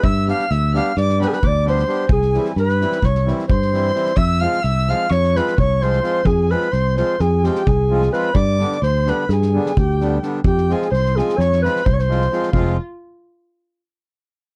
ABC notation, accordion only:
X:1
M:9/8
L:1/8
Q:3/8=86
K:none
V:1 name="Accordion"
z [G,B,DG] z [G,B,DG] z [G,B,DG] z [G,B,DG] [G,B,DG] | z [E,G,CE] z [E,G,CE] z [E,G,CE] z [E,G,CE] [E,G,CE] | z [F,_A,CF] z [F,A,CF] z [F,A,CF] z [F,A,CF] [F,A,CF] | z [F,_A,CF] z [F,A,CF] z [F,A,CF] z [F,A,CF] [F,A,CF] |
z [D,G,B,D] z [D,G,B,D] z [D,G,B,D] z [D,G,B,D] [D,G,B,D] | z [F,_A,CF] z [F,A,CF] z [F,A,CF] z [F,A,CF] [F,A,CF] | [F,_A,CF] z8 |]